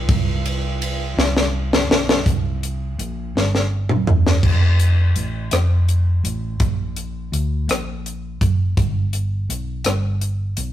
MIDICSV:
0, 0, Header, 1, 3, 480
1, 0, Start_track
1, 0, Key_signature, -1, "major"
1, 0, Tempo, 722892
1, 61, Time_signature, 6, 3, 24, 8
1, 7124, End_track
2, 0, Start_track
2, 0, Title_t, "Fingered electric bass"
2, 0, Program_c, 0, 33
2, 58, Note_on_c, 0, 36, 96
2, 753, Note_off_c, 0, 36, 0
2, 777, Note_on_c, 0, 36, 91
2, 1233, Note_off_c, 0, 36, 0
2, 1258, Note_on_c, 0, 35, 85
2, 1480, Note_off_c, 0, 35, 0
2, 1501, Note_on_c, 0, 36, 89
2, 1955, Note_off_c, 0, 36, 0
2, 1982, Note_on_c, 0, 34, 84
2, 2203, Note_off_c, 0, 34, 0
2, 2226, Note_on_c, 0, 31, 78
2, 2677, Note_off_c, 0, 31, 0
2, 2700, Note_on_c, 0, 28, 74
2, 2921, Note_off_c, 0, 28, 0
2, 2942, Note_on_c, 0, 29, 79
2, 3396, Note_off_c, 0, 29, 0
2, 3426, Note_on_c, 0, 33, 71
2, 3645, Note_off_c, 0, 33, 0
2, 3658, Note_on_c, 0, 29, 75
2, 4114, Note_off_c, 0, 29, 0
2, 4141, Note_on_c, 0, 33, 73
2, 4362, Note_off_c, 0, 33, 0
2, 4384, Note_on_c, 0, 34, 81
2, 4837, Note_off_c, 0, 34, 0
2, 4861, Note_on_c, 0, 38, 69
2, 5082, Note_off_c, 0, 38, 0
2, 5098, Note_on_c, 0, 34, 73
2, 5553, Note_off_c, 0, 34, 0
2, 5584, Note_on_c, 0, 30, 70
2, 5803, Note_off_c, 0, 30, 0
2, 5826, Note_on_c, 0, 31, 90
2, 6276, Note_off_c, 0, 31, 0
2, 6304, Note_on_c, 0, 35, 71
2, 6523, Note_off_c, 0, 35, 0
2, 6543, Note_on_c, 0, 31, 78
2, 6994, Note_off_c, 0, 31, 0
2, 7022, Note_on_c, 0, 35, 78
2, 7124, Note_off_c, 0, 35, 0
2, 7124, End_track
3, 0, Start_track
3, 0, Title_t, "Drums"
3, 58, Note_on_c, 9, 36, 108
3, 62, Note_on_c, 9, 51, 68
3, 125, Note_off_c, 9, 36, 0
3, 128, Note_off_c, 9, 51, 0
3, 302, Note_on_c, 9, 51, 54
3, 369, Note_off_c, 9, 51, 0
3, 543, Note_on_c, 9, 51, 61
3, 609, Note_off_c, 9, 51, 0
3, 788, Note_on_c, 9, 38, 56
3, 854, Note_off_c, 9, 38, 0
3, 907, Note_on_c, 9, 38, 55
3, 973, Note_off_c, 9, 38, 0
3, 1150, Note_on_c, 9, 38, 70
3, 1217, Note_off_c, 9, 38, 0
3, 1269, Note_on_c, 9, 38, 97
3, 1336, Note_off_c, 9, 38, 0
3, 1390, Note_on_c, 9, 38, 89
3, 1456, Note_off_c, 9, 38, 0
3, 1501, Note_on_c, 9, 36, 93
3, 1506, Note_on_c, 9, 42, 77
3, 1568, Note_off_c, 9, 36, 0
3, 1572, Note_off_c, 9, 42, 0
3, 1748, Note_on_c, 9, 42, 58
3, 1815, Note_off_c, 9, 42, 0
3, 1988, Note_on_c, 9, 42, 58
3, 2055, Note_off_c, 9, 42, 0
3, 2237, Note_on_c, 9, 38, 51
3, 2304, Note_off_c, 9, 38, 0
3, 2355, Note_on_c, 9, 38, 46
3, 2421, Note_off_c, 9, 38, 0
3, 2586, Note_on_c, 9, 45, 62
3, 2652, Note_off_c, 9, 45, 0
3, 2705, Note_on_c, 9, 43, 80
3, 2771, Note_off_c, 9, 43, 0
3, 2832, Note_on_c, 9, 38, 71
3, 2898, Note_off_c, 9, 38, 0
3, 2943, Note_on_c, 9, 36, 87
3, 2944, Note_on_c, 9, 49, 76
3, 3009, Note_off_c, 9, 36, 0
3, 3011, Note_off_c, 9, 49, 0
3, 3184, Note_on_c, 9, 42, 52
3, 3250, Note_off_c, 9, 42, 0
3, 3424, Note_on_c, 9, 42, 61
3, 3491, Note_off_c, 9, 42, 0
3, 3661, Note_on_c, 9, 42, 83
3, 3672, Note_on_c, 9, 37, 90
3, 3727, Note_off_c, 9, 42, 0
3, 3738, Note_off_c, 9, 37, 0
3, 3908, Note_on_c, 9, 42, 45
3, 3974, Note_off_c, 9, 42, 0
3, 4148, Note_on_c, 9, 42, 64
3, 4215, Note_off_c, 9, 42, 0
3, 4382, Note_on_c, 9, 42, 69
3, 4383, Note_on_c, 9, 36, 93
3, 4448, Note_off_c, 9, 42, 0
3, 4449, Note_off_c, 9, 36, 0
3, 4625, Note_on_c, 9, 42, 54
3, 4691, Note_off_c, 9, 42, 0
3, 4870, Note_on_c, 9, 42, 60
3, 4937, Note_off_c, 9, 42, 0
3, 5107, Note_on_c, 9, 42, 82
3, 5118, Note_on_c, 9, 37, 91
3, 5174, Note_off_c, 9, 42, 0
3, 5185, Note_off_c, 9, 37, 0
3, 5353, Note_on_c, 9, 42, 42
3, 5419, Note_off_c, 9, 42, 0
3, 5585, Note_on_c, 9, 36, 73
3, 5588, Note_on_c, 9, 42, 62
3, 5652, Note_off_c, 9, 36, 0
3, 5654, Note_off_c, 9, 42, 0
3, 5825, Note_on_c, 9, 36, 93
3, 5827, Note_on_c, 9, 42, 71
3, 5892, Note_off_c, 9, 36, 0
3, 5893, Note_off_c, 9, 42, 0
3, 6063, Note_on_c, 9, 42, 52
3, 6129, Note_off_c, 9, 42, 0
3, 6308, Note_on_c, 9, 42, 60
3, 6375, Note_off_c, 9, 42, 0
3, 6537, Note_on_c, 9, 42, 83
3, 6548, Note_on_c, 9, 37, 91
3, 6603, Note_off_c, 9, 42, 0
3, 6614, Note_off_c, 9, 37, 0
3, 6782, Note_on_c, 9, 42, 43
3, 6849, Note_off_c, 9, 42, 0
3, 7017, Note_on_c, 9, 42, 67
3, 7083, Note_off_c, 9, 42, 0
3, 7124, End_track
0, 0, End_of_file